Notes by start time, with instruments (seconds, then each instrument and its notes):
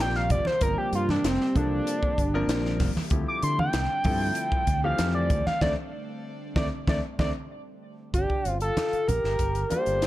Already playing: analog synth pad C3 G3 A#3 F4, grand piano F3 A#3 C4 D4 G4
0.00 fingered electric bass A#1, analog synth lead G5, snare
0.15 analog synth lead F5, snare
0.30 fingered electric bass G1, analog synth lead D5, kick, closed hi-hat, low conga
0.45 analog synth lead C5, muted fingered electric bass stroke, snare, high conga
0.61 fingered electric bass G1, grand piano F3 A#3 C4 D4 A#4, analog synth pad G4, analog synth lead A#4, kick, closed hi-hat
0.78 analog synth lead G4
0.92 fingered electric bass G2, analog synth lead F4, closed hi-hat
1.09 analog synth lead D4, snare, high conga
1.24 fingered electric bass F1, analog synth lead C4, snare, closed hi-hat
1.41 snare
1.55 fingered electric bass C2, grand piano F3 A#3 C4 D4 A4, analog synth lead D4, kick, closed hi-hat, high conga, low conga
1.87 closed hi-hat
2.03 kick
2.18 fingered electric bass G1, kick, closed hi-hat
2.34 grand piano F3 A#3 C4 D4 A#4
2.48 fingered electric bass A#1, snare, closed hi-hat
2.65 snare
2.80 fingered electric bass G1, kick, snare, open hi-hat, low conga
2.95 muted fingered electric bass stroke, snare, high conga
3.10 fingered electric bass D2, analog synth pad D3 A3 C4 D4, grand piano F3 A3 C4 E4 G4, kick, closed hi-hat
3.28 analog synth lead D6
3.43 fingered electric bass D3, analog synth lead C6, closed hi-hat
3.59 analog synth lead G5, high conga
3.73 fingered electric bass C2, snare, closed hi-hat
4.04 fingered electric bass G2, grand piano F3 A3 C4 E4 A4, kick, open hi-hat, high conga, low conga
4.35 closed hi-hat
4.52 kick
4.67 fingered electric bass D2, kick, closed hi-hat
4.84 grand piano E3 F3 A3 C4 G4, analog synth lead F5
4.99 fingered electric bass F2, snare, closed hi-hat
5.15 analog synth lead D5
5.30 fingered electric bass D2, kick, closed hi-hat, low conga
5.46 analog synth lead F5, muted fingered electric bass stroke, snare, high conga
5.61 fingered electric bass D2, grand piano A3 C4 D4, analog synth pad D4, analog synth lead D5, kick, snare, high conga
6.56 fingered electric bass D2, grand piano A3 C4 D4, analog synth lead D5, kick, snare, high conga
6.87 fingered electric bass D2, grand piano A3 C4 D4, analog synth lead D5, kick, snare, high conga
7.19 fingered electric bass D2, grand piano A3 C4 D4, analog synth lead D5, kick, snare, high conga
8.13 fingered electric bass G1, flute D4, analog synth lead G4, kick, closed hi-hat
8.29 muted fingered electric bass stroke, kick
8.45 fingered electric bass G1, closed hi-hat
8.61 flute F4, analog synth lead A4, closed hi-hat
8.77 snare, closed hi-hat, high conga
8.93 muted fingered electric bass stroke, closed hi-hat
9.08 fingered electric bass A#1, flute G4, analog synth lead A#4, closed hi-hat, high conga, low conga
9.24 fingered electric bass G1, snare
9.39 fingered electric bass G1, kick, closed hi-hat
9.55 closed hi-hat
9.70 grand piano G3 A#3 D4 F4 A4, flute G4, analog synth lead C5, closed hi-hat, high conga
9.86 fingered electric bass G1, closed hi-hat
10.02 snare, closed hi-hat